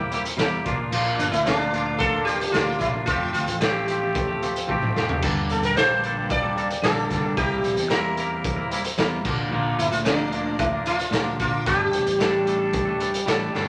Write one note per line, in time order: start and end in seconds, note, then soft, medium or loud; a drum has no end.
0.00 0.11 A#3 medium
0.00 0.12 E4 medium
0.00 0.13 G4 medium
0.00 3.03 A#4 medium
0.00 0.63 C5 medium
0.00 0.64 E5 medium
0.11 0.25 G3 medium
0.11 0.25 A#3 medium
0.11 0.24 E4 medium
0.11 0.24 G4 medium
0.11 closed hi-hat medium
0.25 muted clean electric guitar stroke medium
0.25 closed hi-hat medium
0.37 0.59 E2 loud
0.37 0.63 C3 medium
0.37 0.64 G3 loud
0.37 0.64 A#3 loud
0.37 0.65 E4 loud
0.37 0.65 G4 loud
0.37 snare loud
0.37 closed hi-hat medium
0.64 0.76 A#1 medium
0.64 0.90 A#2 loud
0.64 0.92 F3 loud
0.64 0.80 A#3 loud
0.64 0.79 D4 loud
0.64 0.78 F4 loud
0.64 3.06 D5 medium
0.64 5.19 F5 medium
0.64 kick loud
0.64 closed hi-hat medium
0.78 0.92 A#3 medium
0.78 0.93 D4 medium
0.78 0.94 F4 medium
0.91 1.13 A#1 loud
0.91 1.44 A#2 medium
0.91 1.33 F3 loud
0.91 1.32 A#3 loud
0.91 1.32 D4 medium
0.91 1.32 F4 loud
0.91 crash loud
1.19 1.29 G1 medium
1.19 1.24 D4 medium
1.19 closed hi-hat medium
1.32 2.15 D2 medium
1.32 1.45 E4 medium
1.32 muted clean electric guitar stroke medium
1.32 closed hi-hat medium
1.45 1.99 A#2 medium
1.45 1.72 F3 loud
1.45 1.72 A#3 loud
1.45 2.01 D4 medium
1.45 1.73 D4 medium
1.45 1.75 F4 loud
1.45 snare loud
1.45 closed hi-hat medium
1.72 2.13 F3 medium
1.72 1.88 A#3 medium
1.72 1.86 D4 medium
1.72 1.85 F4 loud
1.72 closed hi-hat medium
1.86 2.15 A#3 medium
1.86 2.13 D4 medium
1.86 2.11 F4 medium
1.98 2.27 A4 loud
1.98 kick loud
1.98 closed hi-hat medium
2.13 2.26 A#3 medium
2.13 2.27 D4 medium
2.13 2.28 F4 medium
2.25 2.40 F3 medium
2.25 2.40 A#3 medium
2.25 2.40 D4 medium
2.25 2.51 G4 medium
2.25 closed hi-hat medium
2.30 2.40 F4 medium
2.41 muted clean electric guitar stroke medium
2.41 closed hi-hat medium
2.52 2.74 D2 loud
2.52 3.06 A#2 medium
2.52 2.79 F3 medium
2.52 2.80 A#3 medium
2.52 2.78 F4 medium
2.52 snare loud
2.52 closed hi-hat medium
2.56 2.81 D4 medium
2.56 2.82 F4 loud
2.79 2.91 A#1 medium
2.79 3.06 F3 medium
2.79 2.96 A#3 medium
2.79 2.94 D4 medium
2.79 2.86 E4 medium
2.79 kick medium
2.79 snare soft
2.79 closed hi-hat medium
2.83 2.92 F4 medium
2.93 3.07 A#3 medium
2.93 3.07 D4 medium
2.93 3.06 F4 medium
3.06 3.28 F1 loud
3.06 3.60 F3 medium
3.06 3.49 A3 medium
3.06 3.47 C4 loud
3.06 3.32 F4 loud
3.06 5.20 A4 medium
3.06 7.33 G5 medium
3.06 kick loud
3.06 closed hi-hat medium
3.10 3.48 G4 loud
3.33 3.45 D2 medium
3.33 3.60 F4 medium
3.33 closed hi-hat medium
3.47 4.30 A1 medium
3.47 muted clean electric guitar stroke medium
3.47 closed hi-hat medium
3.61 3.87 F3 medium
3.61 3.89 A3 medium
3.61 3.89 C4 medium
3.61 4.38 G4 medium
3.61 3.91 G4 loud
3.61 snare loud
3.61 closed hi-hat medium
3.88 4.29 F3 medium
3.88 4.03 A3 medium
3.88 4.02 C4 medium
3.88 4.01 G4 medium
3.88 closed hi-hat medium
4.01 4.30 A3 medium
4.01 4.28 C4 medium
4.01 4.27 G4 medium
4.15 kick loud
4.15 closed hi-hat medium
4.28 4.41 A3 medium
4.28 4.42 C4 medium
4.28 4.44 G4 medium
4.41 4.66 F3 medium
4.41 4.55 A3 medium
4.41 4.55 C4 medium
4.41 4.55 G4 medium
4.41 closed hi-hat medium
4.55 muted clean electric guitar stroke medium
4.55 closed hi-hat medium
4.67 4.90 A1 loud
4.67 4.93 F3 loud
4.67 4.94 A3 medium
4.67 4.96 C4 loud
4.67 4.97 G4 loud
4.67 kick medium
4.82 mid tom medium
4.95 5.06 F1 medium
4.95 5.20 F3 medium
4.95 5.11 A3 medium
4.95 5.09 C4 medium
4.95 5.08 G4 medium
4.95 snare medium
5.08 5.22 A3 medium
5.08 5.21 C4 medium
5.08 5.24 G4 medium
5.08 floor tom medium
5.21 5.43 G1 loud
5.21 5.75 G2 medium
5.21 5.75 D3 loud
5.21 5.63 G3 loud
5.21 5.63 A#3 medium
5.21 7.36 A#3 medium
5.21 5.61 D4 loud
5.21 5.61 A4 loud
5.21 7.36 A5 medium
5.21 kick loud
5.21 splash medium
5.21 crash loud
5.50 5.60 E1 medium
5.50 5.63 A4 medium
5.50 closed hi-hat medium
5.62 6.45 A#1 loud
5.62 5.76 A#4 medium
5.62 muted clean electric guitar stroke medium
5.62 closed hi-hat medium
5.76 6.30 G2 medium
5.76 6.30 D3 medium
5.76 6.01 G3 medium
5.76 6.04 A#3 loud
5.76 6.03 D4 loud
5.76 6.05 A4 loud
5.76 6.31 C5 loud
5.76 snare loud
5.76 closed hi-hat medium
6.03 6.18 G3 medium
6.03 6.18 A#3 medium
6.03 6.16 D4 medium
6.03 6.15 A4 medium
6.03 closed hi-hat medium
6.16 6.44 G3 medium
6.16 6.44 A#3 medium
6.16 6.43 D4 medium
6.16 6.41 A4 medium
6.30 6.86 D5 loud
6.30 kick loud
6.30 closed hi-hat medium
6.43 6.55 G3 medium
6.43 6.57 A#3 medium
6.43 6.57 D4 medium
6.43 6.58 A4 medium
6.56 6.70 G3 medium
6.56 6.71 A#3 medium
6.56 6.69 D4 medium
6.56 6.69 A4 medium
6.56 closed hi-hat medium
6.71 muted clean electric guitar stroke soft
6.71 closed hi-hat medium
6.83 7.04 A#1 loud
6.83 7.35 G2 loud
6.83 7.36 D3 medium
6.83 7.08 G3 loud
6.83 7.10 A#3 loud
6.83 7.10 D4 loud
6.83 7.37 A4 loud
6.83 7.11 A4 loud
6.83 snare loud
6.83 closed hi-hat medium
7.09 7.21 G1 medium
7.09 7.25 G3 medium
7.09 7.25 A#3 medium
7.09 7.23 D4 medium
7.09 7.22 A4 medium
7.09 kick medium
7.09 snare soft
7.09 closed hi-hat medium
7.23 7.36 G3 medium
7.23 7.38 A#3 medium
7.23 7.36 D4 medium
7.23 7.35 A4 medium
7.36 7.58 C2 loud
7.36 7.88 C3 medium
7.36 7.77 G3 medium
7.36 7.77 A#3 medium
7.36 7.76 E4 loud
7.36 7.92 G4 medium
7.36 7.76 A#4 loud
7.36 9.23 C5 medium
7.36 9.23 E5 medium
7.36 11.62 A#5 medium
7.36 kick loud
7.36 closed hi-hat medium
7.64 7.75 A#1 medium
7.64 closed hi-hat medium
7.77 8.60 E2 medium
7.77 muted clean electric guitar stroke medium
7.77 closed hi-hat medium
7.89 8.44 C3 medium
7.89 8.15 G3 medium
7.89 8.17 A#3 medium
7.89 8.18 E4 loud
7.89 8.67 A#4 medium
7.89 8.19 A#4 medium
7.89 snare loud
7.89 closed hi-hat medium
8.17 8.58 G3 medium
8.17 8.32 A#3 medium
8.17 8.31 E4 medium
8.17 8.29 A#4 loud
8.17 closed hi-hat medium
8.30 8.59 A#3 medium
8.30 8.57 E4 medium
8.30 8.55 A#4 medium
8.44 kick loud
8.44 closed hi-hat medium
8.56 8.71 A#3 medium
8.56 8.72 E4 medium
8.56 8.73 A#4 medium
8.71 8.84 G3 medium
8.71 8.84 A#3 medium
8.71 8.84 E4 medium
8.71 8.83 A#4 medium
8.71 closed hi-hat medium
8.84 muted clean electric guitar stroke soft
8.84 closed hi-hat medium
8.98 9.19 E2 loud
8.98 9.23 C3 medium
8.98 9.24 G3 loud
8.98 9.24 A#3 loud
8.98 9.25 E4 loud
8.98 9.25 A#4 loud
8.98 snare loud
8.98 closed hi-hat medium
9.24 9.35 A#1 medium
9.24 9.50 A#2 loud
9.24 9.51 D3 loud
9.24 9.41 F3 medium
9.24 9.40 A#3 loud
9.24 9.39 D4 loud
9.24 9.37 A#4 loud
9.24 13.68 D5 medium
9.24 11.65 F5 medium
9.24 kick loud
9.24 crash medium
9.38 9.51 F3 medium
9.38 9.52 A#3 medium
9.38 9.53 D4 medium
9.38 9.53 A#4 medium
9.51 9.72 A#1 loud
9.51 10.04 A#2 medium
9.51 10.05 D3 medium
9.51 9.92 F3 loud
9.51 9.92 A#3 loud
9.51 9.92 D4 medium
9.51 9.91 A#4 loud
9.79 9.89 G1 medium
9.79 9.91 E4 medium
9.79 closed hi-hat medium
9.92 10.74 D2 medium
9.92 9.97 F4 medium
9.92 muted clean electric guitar stroke soft
9.92 closed hi-hat medium
10.05 10.59 A#2 medium
10.05 10.60 D3 loud
10.05 10.31 F3 medium
10.05 10.32 A#3 loud
10.05 10.59 D4 medium
10.05 10.34 D4 medium
10.05 10.34 A#4 loud
10.05 snare loud
10.05 closed hi-hat medium
10.32 10.48 F3 medium
10.32 10.47 A#3 medium
10.32 10.47 D4 medium
10.32 10.45 A#4 medium
10.32 closed hi-hat medium
10.46 10.75 F3 medium
10.46 10.74 A#3 medium
10.46 10.74 D4 medium
10.46 10.71 A#4 medium
10.59 10.66 E4 medium
10.59 kick loud
10.59 closed hi-hat medium
10.73 10.84 F3 medium
10.73 10.86 A#3 medium
10.73 10.88 D4 medium
10.73 10.88 A#4 medium
10.85 10.99 F3 medium
10.85 10.99 A#3 medium
10.85 10.99 D4 medium
10.85 11.36 F4 loud
10.85 10.98 A#4 medium
10.85 closed hi-hat medium
10.99 muted clean electric guitar stroke soft
10.99 closed hi-hat medium
11.11 11.33 D2 loud
11.11 11.64 A#2 medium
11.11 11.65 D3 loud
11.11 11.38 F3 loud
11.11 11.39 A#3 medium
11.11 11.41 D4 medium
11.11 11.41 A#4 loud
11.11 snare loud
11.11 closed hi-hat medium
11.39 11.50 A#1 medium
11.39 11.54 F3 medium
11.39 11.53 A#3 medium
11.39 11.53 D4 medium
11.39 11.66 F4 medium
11.39 11.51 A#4 medium
11.39 kick medium
11.39 closed hi-hat medium
11.52 11.65 F3 medium
11.52 11.66 A#3 medium
11.52 11.67 D4 medium
11.52 11.64 A#4 medium
11.65 11.87 G1 loud
11.65 12.18 G3 medium
11.65 12.06 A3 medium
11.65 12.05 D4 loud
11.65 13.24 G4 loud
11.65 12.05 A4 medium
11.65 13.68 G5 medium
11.65 13.68 A5 medium
11.65 kick loud
11.65 closed hi-hat medium
11.93 12.03 E1 medium
11.93 closed hi-hat medium
12.06 12.89 A1 loud
12.06 muted clean electric guitar stroke medium
12.06 closed hi-hat medium
12.19 12.44 G3 medium
12.19 12.45 A3 medium
12.19 12.46 D4 medium
12.19 12.47 A4 medium
12.19 snare loud
12.19 closed hi-hat medium
12.45 12.87 G3 medium
12.45 12.61 A3 medium
12.45 12.59 D4 medium
12.45 12.58 A4 medium
12.45 closed hi-hat medium
12.59 12.87 A3 medium
12.59 12.86 D4 medium
12.59 12.84 A4 medium
12.73 kick loud
12.73 closed hi-hat medium
12.85 12.99 A3 medium
12.85 12.99 D4 medium
12.85 13.00 A4 medium
12.98 13.25 G3 medium
12.98 13.12 A3 medium
12.98 13.12 D4 medium
12.98 13.11 A4 medium
12.98 closed hi-hat medium
13.12 muted clean electric guitar stroke medium
13.12 closed hi-hat medium
13.26 13.48 A1 loud
13.26 13.51 G3 medium
13.26 13.53 A3 medium
13.26 13.54 D4 loud
13.26 13.55 A4 loud
13.26 snare loud
13.26 closed hi-hat medium
13.53 13.65 G1 medium
13.53 13.68 G3 medium
13.53 13.68 A3 medium
13.53 13.67 D4 medium
13.53 13.65 A4 medium
13.53 snare medium